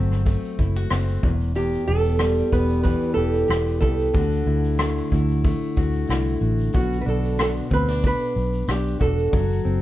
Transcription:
0.00 0.36 G1 medium
0.00 1.31 F#3 medium
0.00 0.24 A3 soft
0.00 0.90 C4 medium
0.00 0.58 F#4 medium
0.12 cross-stick soft
0.12 shaker soft
0.26 1.30 A3 medium
0.26 kick medium
0.26 shaker medium
0.45 shaker soft
0.59 0.85 F#1 medium
0.59 0.76 E4 medium
0.59 kick medium
0.59 shaker soft
0.75 1.31 F#4 medium
0.75 shaker soft
0.77 shaker medium
0.90 1.18 F#1 medium
0.90 1.31 C4 medium
0.90 cross-stick loud
0.90 shaker medium
1.08 shaker soft
1.08 shaker medium
1.23 1.76 E1 medium
1.23 1.54 E2 medium
1.23 kick loud
1.41 shaker soft
1.55 4.15 E2 medium
1.55 1.87 G4 medium
1.55 3.16 G4 medium
1.55 shaker medium
1.73 shaker soft
1.73 shaker medium
1.87 2.41 E1 loud
1.87 2.52 B3 medium
1.87 2.52 A4 medium
1.87 shaker soft
2.05 shaker medium
2.05 shaker soft
2.19 4.22 G3 medium
2.19 cross-stick loud
2.19 shaker medium
2.38 shaker soft
2.53 2.94 E1 medium
2.53 3.49 B3 medium
2.53 2.82 B4 medium
2.53 kick medium
2.69 shaker soft
2.71 shaker soft
2.83 3.13 B4 medium
2.83 kick medium
2.83 shaker medium
2.85 4.13 E3 medium
2.85 shaker medium
3.01 shaker soft
3.04 shaker soft
3.14 3.43 E1 medium
3.14 3.80 G4 medium
3.14 3.48 A4 medium
3.14 shaker soft
3.33 shaker soft
3.47 3.82 E1 medium
3.47 3.80 G4 medium
3.47 shaker medium
3.50 4.22 B3 medium
3.50 cross-stick loud
3.50 shaker medium
3.66 shaker soft
3.68 shaker medium
3.81 4.09 C2 medium
3.81 4.14 G4 medium
3.81 5.07 A4 medium
3.81 kick medium
3.99 shaker soft
4.00 shaker soft
4.13 7.64 D3 medium
4.13 5.77 F#4 medium
4.13 kick loud
4.13 shaker medium
4.15 4.41 D2 loud
4.15 shaker medium
4.31 shaker soft
4.31 shaker medium
4.46 5.00 D2 medium
4.46 5.12 E4 soft
4.46 shaker soft
4.64 shaker soft
4.64 shaker medium
4.78 5.44 A3 medium
4.78 cross-stick loud
4.78 shaker medium
4.98 shaker soft
5.11 5.53 D2 medium
5.11 6.07 E4 medium
5.11 kick medium
5.11 shaker medium
5.28 shaker soft
5.31 shaker soft
5.43 6.81 A3 medium
5.43 kick medium
5.43 shaker medium
5.61 shaker soft
5.64 shaker soft
5.76 6.04 D2 medium
5.76 6.41 F#4 medium
5.76 kick medium
5.76 shaker soft
5.93 shaker soft
5.95 shaker soft
6.07 6.36 C2 medium
6.07 6.81 E4 medium
6.07 shaker medium
6.10 cross-stick loud
6.10 shaker medium
6.26 shaker soft
6.28 shaker medium
6.40 6.68 A1 medium
6.40 6.74 F#4 medium
6.40 shaker soft
6.59 shaker soft
6.61 shaker soft
6.73 7.01 B1 medium
6.73 9.32 B2 medium
6.73 9.00 F#4 medium
6.73 kick loud
6.73 shaker medium
6.75 7.01 F#4 medium
6.75 shaker medium
6.91 shaker soft
6.93 shaker medium
7.01 7.07 B4 medium
7.06 7.59 B1 medium
7.06 7.70 D4 medium
7.06 7.39 A4 medium
7.06 shaker soft
7.24 shaker soft
7.24 shaker medium
7.38 9.40 B3 medium
7.38 cross-stick loud
7.38 shaker medium
7.40 7.49 A4 medium
7.40 shaker medium
7.57 shaker soft
7.71 8.12 D2 medium
7.71 7.89 C4 medium
7.71 8.05 B4 medium
7.71 kick medium
7.87 8.67 D4 soft
7.87 cross-stick soft
7.87 shaker soft
7.90 shaker soft
8.02 kick medium
8.02 shaker medium
8.04 8.70 B4 medium
8.04 shaker medium
8.20 shaker soft
8.23 shaker soft
8.35 8.62 B1 medium
8.35 shaker soft
8.37 shaker soft
8.53 shaker soft
8.54 shaker soft
8.67 8.94 B1 medium
8.67 9.40 D4 medium
8.67 9.01 G4 medium
8.67 cross-stick loud
8.67 shaker medium
8.86 shaker soft
8.87 shaker soft
9.00 9.27 E1 medium
9.00 9.33 F#4 medium
9.00 9.82 A4 medium
9.00 kick medium
9.18 shaker soft
9.33 9.59 F#1 loud
9.33 9.82 F#3 medium
9.33 9.82 F#4 medium
9.33 kick loud
9.33 shaker medium
9.51 shaker soft
9.51 shaker medium
9.65 9.82 F#1 loud
9.65 9.82 C4 medium
9.65 shaker soft

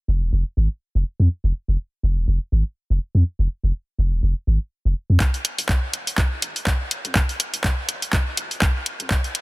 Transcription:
0.08 0.23 F1 loud
0.22 0.30 D#1 medium
0.33 0.44 F1 loud
0.57 0.68 G#1 medium
0.95 1.04 F1 medium
1.20 1.28 F2 medium
1.44 1.52 F1 loud
1.68 1.77 F1 medium
2.03 2.19 F1 loud
2.17 2.26 D#1 medium
2.28 2.39 F1 loud
2.52 2.63 G#1 medium
2.90 2.99 F1 medium
3.15 3.23 F2 medium
3.39 3.48 F1 loud
3.63 3.72 F1 medium
3.98 4.14 F1 loud
4.12 4.21 D#1 medium
4.23 4.34 F1 loud
4.47 4.58 G#1 medium
4.85 4.94 F1 medium
5.10 5.18 F2 medium
5.20 kick loud
5.20 clap soft
5.20 closed hi-hat medium
5.34 5.43 F1 loud
5.34 closed hi-hat soft
5.45 closed hi-hat medium
5.58 5.67 F1 medium
5.58 closed hi-hat soft
5.69 kick loud
5.69 clap soft
5.69 closed hi-hat medium
5.93 6.09 F1 loud
5.93 closed hi-hat medium
6.07 6.16 D#1 medium
6.07 closed hi-hat soft
6.18 kick loud
6.18 clap soft
6.18 closed hi-hat medium
6.42 6.53 G#1 medium
6.42 closed hi-hat medium
6.56 closed hi-hat soft
6.67 kick loud
6.67 clap soft
6.67 closed hi-hat medium
6.80 6.89 F1 medium
6.91 closed hi-hat medium
7.05 7.13 F2 medium
7.05 closed hi-hat soft
7.15 kick loud
7.15 clap medium
7.15 closed hi-hat medium
7.29 7.38 F1 loud
7.29 closed hi-hat soft
7.40 closed hi-hat medium
7.54 7.62 F1 medium
7.54 closed hi-hat soft
7.64 kick loud
7.64 clap medium
7.64 closed hi-hat medium
7.89 8.04 F1 loud
7.89 closed hi-hat medium
8.02 8.11 D#1 medium
8.02 closed hi-hat soft
8.13 kick loud
8.13 clap medium
8.13 closed hi-hat medium
8.37 8.48 G#1 medium
8.37 closed hi-hat loud
8.51 closed hi-hat soft
8.62 kick loud
8.62 clap medium
8.62 closed hi-hat medium
8.76 8.84 F1 medium
8.86 closed hi-hat medium
9.00 9.08 F2 medium
9.00 closed hi-hat soft
9.11 kick loud
9.11 clap medium
9.11 closed hi-hat medium
9.24 9.33 F1 loud
9.24 closed hi-hat soft
9.35 closed hi-hat loud

